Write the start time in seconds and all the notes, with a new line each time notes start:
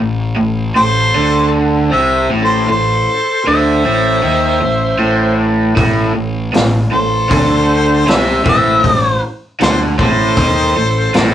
0.00 A1 A2
0.37 A1 A2
0.76 A1 A2 A4 C5
1.15 D2 D3
1.91 C2 C3 C5 E5
2.31 A1 A2
2.43 A4 C5
2.67 A1 A2 A4 C5
3.45 D2 D3 C5 E5
3.85 A1 A2
4.23 D#2 D#3
4.61 A1 A2
4.99 A1 A2
5.76 A1 A2, kick, open hi-hat
6.15 A1 A2
6.54 A1 A2, snare, open hi-hat
6.92 A1 A2 A4 C5
7.29 D2 D3, kick, open hi-hat
8.07 C2 C3 C5 E5, snare, open hi-hat
8.45 A1 A2 C5 E5, kick
8.84 A1 A2, kick, open hi-hat
9.60 D2 D3 A4 C5, snare, open hi-hat
9.99 A1 A2 A4 C5, kick
10.37 D#2 D#3, kick, open hi-hat
10.77 A1 A2
11.14 A1 A2, snare, open hi-hat